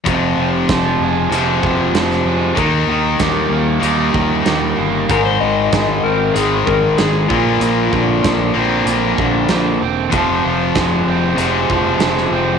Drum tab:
HH |x---x---x---x---|x---x---x---x---|x---x---x---x---|x---x---x---x---|
SD |----o-------oo--|----o-------o---|----o-------o---|----o-------o---|
BD |o---o-----o-----|o---o-----o-----|o---o-----o---o-|--o-o-----o-----|

HH |x---x---x---x---|
SD |----o-------oo--|
BD |o---o-----o-----|